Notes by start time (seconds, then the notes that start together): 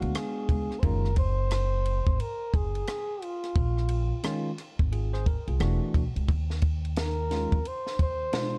Already playing: G#3 B3 D4 F#4 F5
0.02 D2, ride
0.15 G#4, cross-stick, hi-hat pedal, ride
0.49 C#2, kick, ride
0.71 cross-stick
0.80 F#1 D#3 G#3 C5, kick, ride
0.84 C#4 F4 A#4
1.05 cross-stick
1.16 C5, kick, ride
1.51 cross-stick, hi-hat pedal, ride
1.85 ride
2.07 G#1, kick
2.20 A#4, ride
2.54 F#1 G#4, kick, ride
2.75 ride
2.87 cross-stick, hi-hat pedal, ride
3.22 F4, ride
3.43 cross-stick, ride
3.55 A#1, kick, ride
3.77 cross-stick
3.88 ride
4.23 D#3 G#3 C#4 F4, cross-stick, hi-hat pedal, ride
4.58 cross-stick, ride
4.79 G#1, kick
4.92 F4 G#4, ride
5.13 G#4 C5, cross-stick
5.26 A#4, kick, ride
5.47 C2 F4 G#4, ride
5.60 E1 E3 A3 D4 F#4, cross-stick, hi-hat pedal, ride
5.94 B1, kick, ride
6.16 C#2, ride
6.28 D#2, kick, ride
6.50 snare
6.62 kick, ride
6.85 ride
6.96 A#4, snare, hi-hat pedal, ride
7.31 D#3 G#3 C#4 F4, snare, ride
7.52 F2, kick, ride
7.65 C5, ride
7.87 snare
7.99 D#2 C5, kick, ride
8.33 B2 G#3 D4 F4, snare, hi-hat pedal, ride